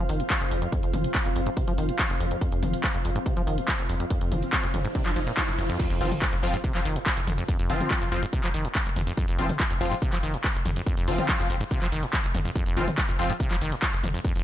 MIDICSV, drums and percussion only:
0, 0, Header, 1, 2, 480
1, 0, Start_track
1, 0, Tempo, 422535
1, 824, Time_signature, 4, 2, 24, 8
1, 16399, End_track
2, 0, Start_track
2, 0, Title_t, "Drums"
2, 104, Note_on_c, 9, 46, 107
2, 218, Note_off_c, 9, 46, 0
2, 226, Note_on_c, 9, 42, 51
2, 340, Note_off_c, 9, 42, 0
2, 343, Note_on_c, 9, 36, 117
2, 344, Note_on_c, 9, 39, 116
2, 344, Note_on_c, 9, 42, 88
2, 456, Note_off_c, 9, 36, 0
2, 458, Note_off_c, 9, 39, 0
2, 458, Note_off_c, 9, 42, 0
2, 466, Note_on_c, 9, 42, 51
2, 579, Note_off_c, 9, 42, 0
2, 584, Note_on_c, 9, 46, 109
2, 697, Note_off_c, 9, 46, 0
2, 705, Note_on_c, 9, 42, 50
2, 819, Note_off_c, 9, 42, 0
2, 823, Note_on_c, 9, 36, 113
2, 823, Note_on_c, 9, 42, 88
2, 936, Note_off_c, 9, 36, 0
2, 937, Note_off_c, 9, 42, 0
2, 945, Note_on_c, 9, 42, 49
2, 1059, Note_off_c, 9, 42, 0
2, 1063, Note_on_c, 9, 46, 97
2, 1063, Note_on_c, 9, 47, 94
2, 1176, Note_off_c, 9, 46, 0
2, 1176, Note_off_c, 9, 47, 0
2, 1186, Note_on_c, 9, 42, 50
2, 1299, Note_off_c, 9, 42, 0
2, 1303, Note_on_c, 9, 36, 115
2, 1303, Note_on_c, 9, 39, 116
2, 1303, Note_on_c, 9, 42, 85
2, 1416, Note_off_c, 9, 36, 0
2, 1416, Note_off_c, 9, 39, 0
2, 1416, Note_off_c, 9, 42, 0
2, 1426, Note_on_c, 9, 42, 51
2, 1539, Note_off_c, 9, 42, 0
2, 1543, Note_on_c, 9, 46, 100
2, 1657, Note_off_c, 9, 46, 0
2, 1665, Note_on_c, 9, 42, 49
2, 1778, Note_off_c, 9, 42, 0
2, 1782, Note_on_c, 9, 36, 118
2, 1783, Note_on_c, 9, 42, 92
2, 1896, Note_off_c, 9, 36, 0
2, 1897, Note_off_c, 9, 42, 0
2, 1905, Note_on_c, 9, 42, 51
2, 2018, Note_off_c, 9, 42, 0
2, 2022, Note_on_c, 9, 46, 99
2, 2136, Note_off_c, 9, 46, 0
2, 2145, Note_on_c, 9, 42, 50
2, 2259, Note_off_c, 9, 42, 0
2, 2262, Note_on_c, 9, 36, 113
2, 2263, Note_on_c, 9, 39, 118
2, 2263, Note_on_c, 9, 42, 88
2, 2376, Note_off_c, 9, 36, 0
2, 2377, Note_off_c, 9, 39, 0
2, 2377, Note_off_c, 9, 42, 0
2, 2386, Note_on_c, 9, 42, 52
2, 2500, Note_off_c, 9, 42, 0
2, 2504, Note_on_c, 9, 46, 102
2, 2618, Note_off_c, 9, 46, 0
2, 2626, Note_on_c, 9, 42, 50
2, 2740, Note_off_c, 9, 42, 0
2, 2742, Note_on_c, 9, 36, 111
2, 2743, Note_on_c, 9, 42, 92
2, 2856, Note_off_c, 9, 36, 0
2, 2857, Note_off_c, 9, 42, 0
2, 2866, Note_on_c, 9, 42, 51
2, 2979, Note_off_c, 9, 42, 0
2, 2984, Note_on_c, 9, 46, 97
2, 2984, Note_on_c, 9, 47, 90
2, 3098, Note_off_c, 9, 46, 0
2, 3098, Note_off_c, 9, 47, 0
2, 3106, Note_on_c, 9, 46, 59
2, 3220, Note_off_c, 9, 46, 0
2, 3223, Note_on_c, 9, 36, 110
2, 3225, Note_on_c, 9, 39, 125
2, 3225, Note_on_c, 9, 42, 88
2, 3337, Note_off_c, 9, 36, 0
2, 3338, Note_off_c, 9, 39, 0
2, 3338, Note_off_c, 9, 42, 0
2, 3346, Note_on_c, 9, 42, 52
2, 3460, Note_off_c, 9, 42, 0
2, 3464, Note_on_c, 9, 46, 101
2, 3578, Note_off_c, 9, 46, 0
2, 3587, Note_on_c, 9, 42, 51
2, 3700, Note_off_c, 9, 42, 0
2, 3703, Note_on_c, 9, 36, 116
2, 3704, Note_on_c, 9, 42, 93
2, 3817, Note_off_c, 9, 36, 0
2, 3818, Note_off_c, 9, 42, 0
2, 3826, Note_on_c, 9, 42, 51
2, 3940, Note_off_c, 9, 42, 0
2, 3944, Note_on_c, 9, 46, 100
2, 4058, Note_off_c, 9, 46, 0
2, 4066, Note_on_c, 9, 42, 51
2, 4180, Note_off_c, 9, 42, 0
2, 4184, Note_on_c, 9, 36, 112
2, 4184, Note_on_c, 9, 39, 123
2, 4184, Note_on_c, 9, 42, 89
2, 4297, Note_off_c, 9, 36, 0
2, 4297, Note_off_c, 9, 39, 0
2, 4297, Note_off_c, 9, 42, 0
2, 4306, Note_on_c, 9, 42, 52
2, 4419, Note_off_c, 9, 42, 0
2, 4424, Note_on_c, 9, 46, 104
2, 4537, Note_off_c, 9, 46, 0
2, 4545, Note_on_c, 9, 42, 53
2, 4659, Note_off_c, 9, 42, 0
2, 4663, Note_on_c, 9, 42, 98
2, 4664, Note_on_c, 9, 36, 112
2, 4776, Note_off_c, 9, 42, 0
2, 4777, Note_off_c, 9, 36, 0
2, 4786, Note_on_c, 9, 42, 52
2, 4899, Note_off_c, 9, 42, 0
2, 4904, Note_on_c, 9, 46, 102
2, 4904, Note_on_c, 9, 47, 89
2, 5017, Note_off_c, 9, 46, 0
2, 5017, Note_off_c, 9, 47, 0
2, 5026, Note_on_c, 9, 46, 60
2, 5140, Note_off_c, 9, 46, 0
2, 5144, Note_on_c, 9, 36, 115
2, 5144, Note_on_c, 9, 39, 124
2, 5144, Note_on_c, 9, 42, 93
2, 5257, Note_off_c, 9, 36, 0
2, 5258, Note_off_c, 9, 39, 0
2, 5258, Note_off_c, 9, 42, 0
2, 5266, Note_on_c, 9, 42, 53
2, 5380, Note_off_c, 9, 42, 0
2, 5384, Note_on_c, 9, 46, 101
2, 5384, Note_on_c, 9, 47, 81
2, 5497, Note_off_c, 9, 46, 0
2, 5497, Note_off_c, 9, 47, 0
2, 5506, Note_on_c, 9, 42, 53
2, 5620, Note_off_c, 9, 42, 0
2, 5624, Note_on_c, 9, 36, 117
2, 5625, Note_on_c, 9, 42, 95
2, 5738, Note_off_c, 9, 36, 0
2, 5738, Note_off_c, 9, 42, 0
2, 5747, Note_on_c, 9, 39, 64
2, 5747, Note_on_c, 9, 42, 54
2, 5860, Note_off_c, 9, 39, 0
2, 5860, Note_off_c, 9, 42, 0
2, 5864, Note_on_c, 9, 46, 101
2, 5978, Note_off_c, 9, 46, 0
2, 5987, Note_on_c, 9, 42, 54
2, 6100, Note_off_c, 9, 42, 0
2, 6104, Note_on_c, 9, 36, 113
2, 6105, Note_on_c, 9, 39, 123
2, 6105, Note_on_c, 9, 42, 95
2, 6218, Note_off_c, 9, 36, 0
2, 6218, Note_off_c, 9, 39, 0
2, 6218, Note_off_c, 9, 42, 0
2, 6227, Note_on_c, 9, 42, 54
2, 6341, Note_off_c, 9, 42, 0
2, 6345, Note_on_c, 9, 46, 101
2, 6459, Note_off_c, 9, 46, 0
2, 6467, Note_on_c, 9, 46, 60
2, 6581, Note_off_c, 9, 46, 0
2, 6584, Note_on_c, 9, 36, 122
2, 6585, Note_on_c, 9, 42, 100
2, 6585, Note_on_c, 9, 49, 108
2, 6697, Note_off_c, 9, 36, 0
2, 6699, Note_off_c, 9, 42, 0
2, 6699, Note_off_c, 9, 49, 0
2, 6707, Note_on_c, 9, 42, 54
2, 6821, Note_off_c, 9, 42, 0
2, 6825, Note_on_c, 9, 46, 104
2, 6938, Note_off_c, 9, 46, 0
2, 6948, Note_on_c, 9, 46, 65
2, 6948, Note_on_c, 9, 47, 83
2, 7061, Note_off_c, 9, 46, 0
2, 7061, Note_off_c, 9, 47, 0
2, 7063, Note_on_c, 9, 36, 119
2, 7066, Note_on_c, 9, 39, 125
2, 7066, Note_on_c, 9, 42, 94
2, 7177, Note_off_c, 9, 36, 0
2, 7180, Note_off_c, 9, 39, 0
2, 7180, Note_off_c, 9, 42, 0
2, 7189, Note_on_c, 9, 42, 57
2, 7303, Note_off_c, 9, 42, 0
2, 7307, Note_on_c, 9, 46, 104
2, 7420, Note_off_c, 9, 46, 0
2, 7429, Note_on_c, 9, 42, 56
2, 7542, Note_off_c, 9, 42, 0
2, 7543, Note_on_c, 9, 36, 120
2, 7546, Note_on_c, 9, 42, 100
2, 7656, Note_off_c, 9, 36, 0
2, 7660, Note_off_c, 9, 42, 0
2, 7668, Note_on_c, 9, 39, 63
2, 7668, Note_on_c, 9, 42, 56
2, 7782, Note_off_c, 9, 39, 0
2, 7782, Note_off_c, 9, 42, 0
2, 7786, Note_on_c, 9, 46, 106
2, 7899, Note_off_c, 9, 46, 0
2, 7907, Note_on_c, 9, 42, 55
2, 8021, Note_off_c, 9, 42, 0
2, 8023, Note_on_c, 9, 36, 116
2, 8025, Note_on_c, 9, 39, 127
2, 8025, Note_on_c, 9, 42, 97
2, 8136, Note_off_c, 9, 36, 0
2, 8139, Note_off_c, 9, 39, 0
2, 8139, Note_off_c, 9, 42, 0
2, 8147, Note_on_c, 9, 42, 56
2, 8260, Note_off_c, 9, 42, 0
2, 8265, Note_on_c, 9, 46, 110
2, 8265, Note_on_c, 9, 47, 82
2, 8378, Note_off_c, 9, 46, 0
2, 8378, Note_off_c, 9, 47, 0
2, 8386, Note_on_c, 9, 42, 56
2, 8499, Note_off_c, 9, 42, 0
2, 8503, Note_on_c, 9, 36, 121
2, 8504, Note_on_c, 9, 42, 98
2, 8616, Note_off_c, 9, 36, 0
2, 8617, Note_off_c, 9, 42, 0
2, 8626, Note_on_c, 9, 42, 54
2, 8740, Note_off_c, 9, 42, 0
2, 8744, Note_on_c, 9, 46, 108
2, 8858, Note_off_c, 9, 46, 0
2, 8867, Note_on_c, 9, 42, 57
2, 8867, Note_on_c, 9, 47, 82
2, 8981, Note_off_c, 9, 42, 0
2, 8981, Note_off_c, 9, 47, 0
2, 8982, Note_on_c, 9, 36, 125
2, 8984, Note_on_c, 9, 39, 121
2, 8984, Note_on_c, 9, 42, 97
2, 9096, Note_off_c, 9, 36, 0
2, 9098, Note_off_c, 9, 39, 0
2, 9098, Note_off_c, 9, 42, 0
2, 9107, Note_on_c, 9, 42, 56
2, 9220, Note_off_c, 9, 42, 0
2, 9224, Note_on_c, 9, 46, 110
2, 9337, Note_off_c, 9, 46, 0
2, 9346, Note_on_c, 9, 42, 55
2, 9459, Note_off_c, 9, 42, 0
2, 9462, Note_on_c, 9, 36, 125
2, 9463, Note_on_c, 9, 42, 102
2, 9576, Note_off_c, 9, 36, 0
2, 9577, Note_off_c, 9, 42, 0
2, 9585, Note_on_c, 9, 39, 61
2, 9585, Note_on_c, 9, 42, 54
2, 9699, Note_off_c, 9, 39, 0
2, 9699, Note_off_c, 9, 42, 0
2, 9702, Note_on_c, 9, 46, 111
2, 9816, Note_off_c, 9, 46, 0
2, 9824, Note_on_c, 9, 42, 58
2, 9938, Note_off_c, 9, 42, 0
2, 9942, Note_on_c, 9, 36, 122
2, 9942, Note_on_c, 9, 39, 123
2, 9942, Note_on_c, 9, 42, 100
2, 10055, Note_off_c, 9, 39, 0
2, 10055, Note_off_c, 9, 42, 0
2, 10056, Note_off_c, 9, 36, 0
2, 10064, Note_on_c, 9, 42, 56
2, 10178, Note_off_c, 9, 42, 0
2, 10182, Note_on_c, 9, 46, 112
2, 10182, Note_on_c, 9, 47, 81
2, 10295, Note_off_c, 9, 46, 0
2, 10295, Note_off_c, 9, 47, 0
2, 10304, Note_on_c, 9, 46, 65
2, 10418, Note_off_c, 9, 46, 0
2, 10422, Note_on_c, 9, 36, 123
2, 10422, Note_on_c, 9, 42, 98
2, 10535, Note_off_c, 9, 42, 0
2, 10536, Note_off_c, 9, 36, 0
2, 10544, Note_on_c, 9, 42, 53
2, 10658, Note_off_c, 9, 42, 0
2, 10662, Note_on_c, 9, 46, 109
2, 10775, Note_off_c, 9, 46, 0
2, 10785, Note_on_c, 9, 46, 66
2, 10785, Note_on_c, 9, 47, 84
2, 10898, Note_off_c, 9, 46, 0
2, 10898, Note_off_c, 9, 47, 0
2, 10902, Note_on_c, 9, 36, 126
2, 10903, Note_on_c, 9, 39, 115
2, 10903, Note_on_c, 9, 42, 97
2, 11016, Note_off_c, 9, 36, 0
2, 11016, Note_off_c, 9, 39, 0
2, 11016, Note_off_c, 9, 42, 0
2, 11025, Note_on_c, 9, 42, 55
2, 11139, Note_off_c, 9, 42, 0
2, 11143, Note_on_c, 9, 46, 109
2, 11257, Note_off_c, 9, 46, 0
2, 11265, Note_on_c, 9, 42, 53
2, 11379, Note_off_c, 9, 42, 0
2, 11382, Note_on_c, 9, 36, 127
2, 11384, Note_on_c, 9, 42, 95
2, 11496, Note_off_c, 9, 36, 0
2, 11497, Note_off_c, 9, 42, 0
2, 11505, Note_on_c, 9, 39, 60
2, 11505, Note_on_c, 9, 42, 53
2, 11619, Note_off_c, 9, 39, 0
2, 11619, Note_off_c, 9, 42, 0
2, 11624, Note_on_c, 9, 46, 115
2, 11738, Note_off_c, 9, 46, 0
2, 11746, Note_on_c, 9, 42, 55
2, 11859, Note_off_c, 9, 42, 0
2, 11863, Note_on_c, 9, 36, 121
2, 11863, Note_on_c, 9, 39, 119
2, 11863, Note_on_c, 9, 42, 97
2, 11976, Note_off_c, 9, 36, 0
2, 11977, Note_off_c, 9, 39, 0
2, 11977, Note_off_c, 9, 42, 0
2, 11987, Note_on_c, 9, 42, 56
2, 12101, Note_off_c, 9, 42, 0
2, 12104, Note_on_c, 9, 46, 113
2, 12104, Note_on_c, 9, 47, 83
2, 12218, Note_off_c, 9, 46, 0
2, 12218, Note_off_c, 9, 47, 0
2, 12226, Note_on_c, 9, 42, 54
2, 12340, Note_off_c, 9, 42, 0
2, 12343, Note_on_c, 9, 36, 123
2, 12343, Note_on_c, 9, 42, 93
2, 12456, Note_off_c, 9, 36, 0
2, 12457, Note_off_c, 9, 42, 0
2, 12465, Note_on_c, 9, 42, 53
2, 12579, Note_off_c, 9, 42, 0
2, 12583, Note_on_c, 9, 46, 110
2, 12697, Note_off_c, 9, 46, 0
2, 12706, Note_on_c, 9, 42, 55
2, 12706, Note_on_c, 9, 47, 87
2, 12819, Note_off_c, 9, 42, 0
2, 12819, Note_off_c, 9, 47, 0
2, 12823, Note_on_c, 9, 36, 123
2, 12823, Note_on_c, 9, 39, 110
2, 12823, Note_on_c, 9, 42, 92
2, 12937, Note_off_c, 9, 36, 0
2, 12937, Note_off_c, 9, 39, 0
2, 12937, Note_off_c, 9, 42, 0
2, 12945, Note_on_c, 9, 42, 53
2, 13059, Note_off_c, 9, 42, 0
2, 13063, Note_on_c, 9, 46, 111
2, 13177, Note_off_c, 9, 46, 0
2, 13185, Note_on_c, 9, 42, 53
2, 13299, Note_off_c, 9, 42, 0
2, 13303, Note_on_c, 9, 36, 126
2, 13303, Note_on_c, 9, 42, 94
2, 13416, Note_off_c, 9, 42, 0
2, 13417, Note_off_c, 9, 36, 0
2, 13425, Note_on_c, 9, 39, 58
2, 13425, Note_on_c, 9, 42, 53
2, 13539, Note_off_c, 9, 39, 0
2, 13539, Note_off_c, 9, 42, 0
2, 13543, Note_on_c, 9, 46, 107
2, 13657, Note_off_c, 9, 46, 0
2, 13665, Note_on_c, 9, 42, 51
2, 13779, Note_off_c, 9, 42, 0
2, 13783, Note_on_c, 9, 36, 123
2, 13784, Note_on_c, 9, 39, 114
2, 13784, Note_on_c, 9, 42, 89
2, 13896, Note_off_c, 9, 36, 0
2, 13898, Note_off_c, 9, 39, 0
2, 13898, Note_off_c, 9, 42, 0
2, 13906, Note_on_c, 9, 42, 53
2, 14020, Note_off_c, 9, 42, 0
2, 14024, Note_on_c, 9, 46, 111
2, 14024, Note_on_c, 9, 47, 89
2, 14138, Note_off_c, 9, 46, 0
2, 14138, Note_off_c, 9, 47, 0
2, 14146, Note_on_c, 9, 46, 63
2, 14260, Note_off_c, 9, 46, 0
2, 14263, Note_on_c, 9, 36, 117
2, 14264, Note_on_c, 9, 42, 92
2, 14377, Note_off_c, 9, 36, 0
2, 14378, Note_off_c, 9, 42, 0
2, 14385, Note_on_c, 9, 42, 49
2, 14499, Note_off_c, 9, 42, 0
2, 14504, Note_on_c, 9, 46, 103
2, 14618, Note_off_c, 9, 46, 0
2, 14627, Note_on_c, 9, 46, 63
2, 14627, Note_on_c, 9, 47, 90
2, 14741, Note_off_c, 9, 46, 0
2, 14741, Note_off_c, 9, 47, 0
2, 14743, Note_on_c, 9, 36, 120
2, 14745, Note_on_c, 9, 39, 114
2, 14745, Note_on_c, 9, 42, 91
2, 14856, Note_off_c, 9, 36, 0
2, 14859, Note_off_c, 9, 39, 0
2, 14859, Note_off_c, 9, 42, 0
2, 14867, Note_on_c, 9, 42, 53
2, 14980, Note_off_c, 9, 42, 0
2, 14984, Note_on_c, 9, 46, 106
2, 15098, Note_off_c, 9, 46, 0
2, 15107, Note_on_c, 9, 42, 49
2, 15221, Note_off_c, 9, 42, 0
2, 15223, Note_on_c, 9, 36, 123
2, 15225, Note_on_c, 9, 42, 91
2, 15337, Note_off_c, 9, 36, 0
2, 15339, Note_off_c, 9, 42, 0
2, 15347, Note_on_c, 9, 39, 59
2, 15347, Note_on_c, 9, 42, 50
2, 15460, Note_off_c, 9, 39, 0
2, 15460, Note_off_c, 9, 42, 0
2, 15465, Note_on_c, 9, 46, 105
2, 15579, Note_off_c, 9, 46, 0
2, 15588, Note_on_c, 9, 42, 51
2, 15702, Note_off_c, 9, 42, 0
2, 15703, Note_on_c, 9, 36, 117
2, 15706, Note_on_c, 9, 39, 113
2, 15706, Note_on_c, 9, 42, 88
2, 15817, Note_off_c, 9, 36, 0
2, 15819, Note_off_c, 9, 39, 0
2, 15819, Note_off_c, 9, 42, 0
2, 15827, Note_on_c, 9, 42, 52
2, 15941, Note_off_c, 9, 42, 0
2, 15946, Note_on_c, 9, 46, 109
2, 15946, Note_on_c, 9, 47, 91
2, 16060, Note_off_c, 9, 46, 0
2, 16060, Note_off_c, 9, 47, 0
2, 16068, Note_on_c, 9, 42, 51
2, 16182, Note_off_c, 9, 42, 0
2, 16183, Note_on_c, 9, 36, 114
2, 16186, Note_on_c, 9, 42, 90
2, 16297, Note_off_c, 9, 36, 0
2, 16300, Note_off_c, 9, 42, 0
2, 16308, Note_on_c, 9, 42, 49
2, 16399, Note_off_c, 9, 42, 0
2, 16399, End_track
0, 0, End_of_file